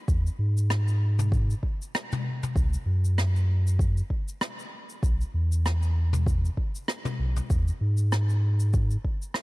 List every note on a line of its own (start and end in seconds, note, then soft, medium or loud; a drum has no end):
0.08 0.29 E2 medium
0.08 kick loud
0.08 shaker medium
0.27 shaker medium
0.39 1.55 G#2 medium
0.57 shaker medium
0.70 cross-stick medium
0.70 shaker medium
0.88 shaker soft
1.19 mid tom medium
1.19 shaker medium
1.32 kick loud
1.32 shaker medium
1.50 shaker soft
1.63 kick medium
1.82 shaker medium
1.95 cross-stick loud
1.95 shaker medium
2.12 mid tom medium
2.12 shaker soft
2.43 mid tom medium
2.43 shaker medium
2.55 2.77 C#2 medium
2.55 kick loud
2.55 shaker medium
2.73 shaker medium
2.86 4.02 F#2 medium
3.05 shaker medium
3.18 cross-stick medium
3.18 shaker medium
3.36 shaker soft
3.67 shaker medium
3.79 kick loud
3.79 shaker medium
3.97 shaker soft
4.10 kick medium
4.28 shaker medium
4.41 cross-stick loud
4.41 shaker medium
4.59 shaker medium
4.89 shaker medium
5.03 5.24 B1 medium
5.03 kick loud
5.03 shaker medium
5.21 shaker soft
5.34 6.50 E2 medium
5.52 shaker medium
5.66 cross-stick medium
5.66 shaker medium
5.82 shaker soft
6.13 mid tom medium
6.13 shaker medium
6.26 kick loud
6.26 shaker medium
6.45 shaker soft
6.57 kick medium
6.75 shaker medium
6.88 cross-stick loud
6.88 shaker medium
7.05 mid tom medium
7.05 shaker soft
7.19 7.40 B1 medium
7.36 mid tom soft
7.36 shaker medium
7.50 7.71 E2 loud
7.50 kick loud
7.50 shaker medium
7.68 shaker medium
7.81 8.97 G#2 medium
7.97 shaker medium
8.12 cross-stick medium
8.12 shaker medium
8.29 shaker soft
8.60 shaker medium
8.73 kick loud
8.73 shaker medium
8.91 shaker soft
9.05 kick medium
9.22 shaker medium
9.34 cross-stick medium
9.34 shaker medium